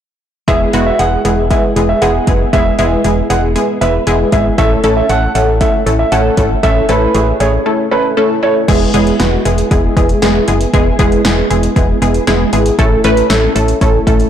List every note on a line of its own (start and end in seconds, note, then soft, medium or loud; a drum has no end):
0.48 0.66 E1 loud
0.48 0.71 G#3 loud
0.48 0.71 B3 medium
0.48 0.71 E4 medium
0.48 0.71 G#4 loud
0.48 0.58 E5 medium
0.48 kick loud
0.48 closed hi-hat medium
0.73 0.92 E1 medium
0.73 0.96 G#3 loud
0.73 0.96 B3 loud
0.73 0.96 E4 loud
0.73 0.96 F#4 loud
0.73 closed hi-hat medium
0.86 0.97 E5 medium
0.99 1.17 E1 medium
0.99 1.22 G#3 medium
0.99 1.22 B3 medium
0.99 1.22 E4 medium
0.99 1.22 G#4 medium
0.99 1.19 F#5 medium
0.99 closed hi-hat medium
1.25 1.52 E1 medium
1.25 1.48 G#3 medium
1.25 1.48 B3 medium
1.25 1.48 E4 medium
1.25 1.48 G#4 medium
1.25 1.35 F#5 medium
1.25 closed hi-hat medium
1.50 1.73 G#3 medium
1.50 1.73 B3 medium
1.50 1.73 E4 medium
1.50 1.73 G#4 medium
1.50 1.61 E5 medium
1.50 kick medium
1.50 closed hi-hat medium
1.76 1.94 E1 loud
1.76 1.99 G#3 medium
1.76 1.99 B3 medium
1.76 1.99 E4 medium
1.76 1.99 G#4 medium
1.76 closed hi-hat medium
1.89 1.99 E5 medium
2.02 2.20 E1 loud
2.02 2.25 G#3 loud
2.02 2.25 B3 medium
2.02 2.25 E4 loud
2.02 2.25 G#4 loud
2.02 2.38 F#5 medium
2.02 closed hi-hat medium
2.27 2.45 F#1 medium
2.27 2.50 G#3 medium
2.27 2.50 B3 medium
2.27 2.50 E4 medium
2.27 2.50 G#4 medium
2.27 kick medium
2.27 closed hi-hat medium
2.53 2.71 E1 loud
2.53 2.76 G#3 loud
2.53 2.76 B3 medium
2.53 2.76 E4 medium
2.53 2.76 G#4 loud
2.53 2.73 E5 medium
2.53 kick loud
2.53 closed hi-hat medium
2.79 2.97 E1 loud
2.79 3.01 G#3 loud
2.79 3.01 B3 loud
2.79 3.01 E4 loud
2.79 3.01 G#4 loud
2.79 3.15 E5 medium
2.79 closed hi-hat medium
3.04 3.22 E1 loud
3.04 3.27 G#3 medium
3.04 3.27 B3 medium
3.04 3.27 E4 medium
3.04 3.27 G#4 medium
3.04 closed hi-hat medium
3.30 3.57 E1 medium
3.30 3.53 G#3 medium
3.30 3.53 B3 medium
3.30 3.53 E4 medium
3.30 3.53 G#4 medium
3.30 3.40 F#5 medium
3.30 closed hi-hat medium
3.56 3.78 G#3 medium
3.56 3.78 B3 medium
3.56 3.78 E4 medium
3.56 3.78 G#4 medium
3.56 closed hi-hat medium
3.81 3.99 E1 medium
3.81 4.04 G#3 medium
3.81 4.04 B3 medium
3.81 4.04 E4 medium
3.81 4.04 B4 medium
3.81 3.91 E5 medium
3.81 closed hi-hat medium
4.07 4.25 E1 medium
4.07 4.30 G#3 loud
4.07 4.30 B3 medium
4.07 4.30 E4 loud
4.07 4.30 G#4 loud
4.07 closed hi-hat medium
4.32 4.50 G#1 medium
4.32 4.55 G#3 medium
4.32 4.55 B3 medium
4.32 4.55 E4 medium
4.32 4.55 G#4 loud
4.32 4.43 E5 medium
4.32 kick medium
4.32 closed hi-hat medium
4.58 4.76 A1 loud
4.58 4.81 A3 loud
4.58 4.81 C#4 medium
4.58 4.81 E4 medium
4.58 4.81 A4 loud
4.58 4.68 E5 medium
4.58 kick loud
4.58 closed hi-hat medium
4.84 5.02 A1 loud
4.84 5.07 A3 loud
4.84 5.07 C#4 loud
4.84 5.07 E4 loud
4.84 5.07 A4 loud
4.84 closed hi-hat medium
4.97 5.07 E5 medium
5.09 5.27 A1 loud
5.09 5.32 A3 medium
5.09 5.32 C#4 medium
5.09 5.32 E4 medium
5.09 5.32 A4 medium
5.09 5.30 F#5 medium
5.09 closed hi-hat medium
5.35 5.62 A1 loud
5.35 5.58 A3 medium
5.35 5.58 C#4 medium
5.35 5.58 E4 medium
5.35 5.58 A4 medium
5.35 5.45 F#5 medium
5.35 closed hi-hat medium
5.61 5.83 A3 medium
5.61 5.83 C#4 medium
5.61 5.83 E4 medium
5.61 5.84 A4 medium
5.61 5.71 E5 medium
5.61 kick medium
5.61 closed hi-hat medium
5.86 6.04 A1 medium
5.86 6.09 A3 medium
5.86 6.09 C#4 medium
5.86 6.09 E4 medium
5.86 6.09 A4 medium
5.86 closed hi-hat medium
5.99 6.09 E5 medium
6.12 6.30 A1 medium
6.12 6.35 A3 loud
6.12 6.35 C#4 loud
6.12 6.35 E4 medium
6.12 6.35 A4 loud
6.12 6.48 F#5 medium
6.12 closed hi-hat medium
6.37 6.56 G#1 medium
6.37 6.60 A3 medium
6.37 6.60 C#4 medium
6.37 6.60 E4 medium
6.37 6.60 A4 medium
6.37 kick medium
6.37 closed hi-hat medium
6.63 6.81 A1 loud
6.63 6.86 A3 loud
6.63 6.86 C#4 loud
6.63 6.86 E4 loud
6.63 6.86 A4 loud
6.63 6.84 E5 medium
6.63 kick loud
6.63 closed hi-hat medium
6.89 7.07 A1 loud
6.89 7.12 A3 loud
6.89 7.12 C#4 loud
6.89 7.12 E4 loud
6.89 7.12 A4 loud
6.89 7.25 B4 medium
6.89 closed hi-hat medium
7.15 7.33 A1 loud
7.15 7.37 A3 medium
7.15 7.37 C#4 medium
7.15 7.37 E4 medium
7.15 7.37 G#4 medium
7.15 closed hi-hat medium
7.40 7.58 A1 medium
7.40 7.63 A3 medium
7.40 7.63 C#4 medium
7.40 7.63 E4 medium
7.40 7.63 G#4 loud
7.40 7.50 C#5 medium
7.40 closed hi-hat medium
7.66 7.89 A3 medium
7.66 7.89 C#4 medium
7.66 7.89 E4 medium
7.66 7.89 A4 medium
7.91 8.14 A3 medium
7.91 8.14 C#4 medium
7.91 8.14 E4 medium
7.91 8.14 A4 medium
7.91 8.02 B4 medium
8.17 8.40 A3 loud
8.17 8.40 C#4 medium
8.17 8.40 E4 medium
8.17 8.40 A4 loud
8.43 8.65 A3 medium
8.43 8.65 C#4 medium
8.43 8.65 E4 medium
8.43 8.65 A4 medium
8.43 8.53 C#5 medium
8.68 8.86 E1 loud
8.68 8.91 G#3 loud
8.68 8.91 B3 medium
8.68 8.91 E4 loud
8.68 8.91 G#4 loud
8.68 kick loud
8.68 closed hi-hat medium
8.68 crash medium
8.94 9.12 E1 loud
8.94 9.17 G#3 loud
8.94 9.17 B3 loud
8.94 9.17 E4 loud
8.94 9.17 G#4 loud
8.94 closed hi-hat medium
9.07 closed hi-hat soft
9.20 9.38 E1 loud
9.20 9.42 G#3 medium
9.20 9.42 B3 medium
9.20 9.42 E4 medium
9.20 9.42 F#4 medium
9.20 snare loud
9.20 closed hi-hat medium
9.45 9.63 E1 loud
9.45 9.68 G#3 medium
9.45 9.68 B3 medium
9.45 9.68 E4 medium
9.45 9.68 G#4 medium
9.45 closed hi-hat medium
9.58 closed hi-hat soft
9.71 9.89 E1 loud
9.71 9.94 G#3 medium
9.71 9.94 B3 medium
9.71 9.94 E4 medium
9.71 9.94 G#4 loud
9.71 kick medium
9.71 closed hi-hat medium
9.97 10.15 E1 loud
9.97 10.19 G#3 medium
9.97 10.19 B3 medium
9.97 10.19 E4 medium
9.97 10.19 G#4 medium
9.97 kick loud
9.97 closed hi-hat medium
10.09 closed hi-hat soft
10.22 10.40 E1 loud
10.22 10.45 G#3 loud
10.22 10.45 B3 loud
10.22 10.45 E4 medium
10.22 10.45 G#4 loud
10.22 snare loud
10.22 closed hi-hat medium
10.48 10.66 F#1 medium
10.48 10.71 G#3 medium
10.48 10.71 B3 medium
10.48 10.71 E4 medium
10.48 10.71 G#4 medium
10.48 closed hi-hat medium
10.61 closed hi-hat soft
10.73 10.92 E1 loud
10.73 10.96 G#3 loud
10.73 10.96 B3 medium
10.73 10.96 E4 medium
10.73 10.96 G#4 loud
10.73 kick loud
10.73 closed hi-hat medium
10.99 11.17 E1 loud
10.99 11.22 G#3 loud
10.99 11.22 B3 loud
10.99 11.22 E4 loud
10.99 11.22 G#4 loud
10.99 kick medium
10.99 closed hi-hat medium
11.12 closed hi-hat soft
11.25 11.43 E1 medium
11.25 11.48 G#3 medium
11.25 11.48 B3 medium
11.25 11.48 E4 medium
11.25 11.48 G#4 medium
11.25 snare loud
11.25 closed hi-hat medium
11.50 11.68 E1 loud
11.50 11.73 G#3 medium
11.50 11.73 B3 medium
11.50 11.73 E4 medium
11.50 11.73 G#4 medium
11.50 closed hi-hat medium
11.63 closed hi-hat soft
11.76 11.94 E1 loud
11.76 11.99 G#3 medium
11.76 11.99 B3 medium
11.76 11.99 E4 medium
11.76 11.99 G#4 medium
11.76 kick medium
11.76 closed hi-hat medium
12.02 12.20 E1 medium
12.02 12.25 G#3 medium
12.02 12.24 B3 medium
12.02 12.25 E4 medium
12.02 12.25 G#4 loud
12.02 closed hi-hat medium
12.14 closed hi-hat soft
12.27 12.45 E1 loud
12.27 12.50 G#3 loud
12.27 12.50 B3 medium
12.27 12.50 E4 loud
12.27 12.50 G#4 loud
12.27 snare loud
12.27 closed hi-hat medium
12.53 12.71 G#1 medium
12.53 12.76 G#3 medium
12.53 12.76 B3 medium
12.53 12.76 E4 medium
12.53 12.76 G#4 loud
12.53 closed hi-hat medium
12.66 closed hi-hat soft
12.79 12.97 A1 loud
12.79 13.01 A3 loud
12.79 13.01 C#4 loud
12.79 13.01 E4 loud
12.79 13.01 A4 loud
12.79 kick loud
12.79 closed hi-hat medium
13.04 13.22 A1 loud
13.04 13.27 A3 loud
13.04 13.27 C#4 loud
13.04 13.27 E4 loud
13.04 13.27 B4 loud
13.04 closed hi-hat medium
13.17 closed hi-hat soft
13.30 13.48 A1 loud
13.30 13.53 A3 medium
13.30 13.53 C#4 medium
13.30 13.53 E4 medium
13.30 13.53 A4 medium
13.30 snare loud
13.30 closed hi-hat medium
13.56 13.74 A1 medium
13.56 13.78 A3 medium
13.56 13.78 C#4 medium
13.56 13.78 E4 medium
13.56 13.78 A4 medium
13.56 closed hi-hat medium
13.68 closed hi-hat soft
13.81 13.99 A1 loud
13.81 14.04 A3 medium
13.81 14.04 C#4 medium
13.81 14.04 E4 medium
13.81 14.04 A4 medium
13.81 kick medium
13.81 closed hi-hat medium
14.07 14.25 A1 medium
14.07 14.30 A3 medium
14.07 14.30 C#4 medium
14.07 14.30 E4 medium
14.07 14.30 A4 loud
14.07 kick loud
14.07 closed hi-hat medium
14.20 closed hi-hat soft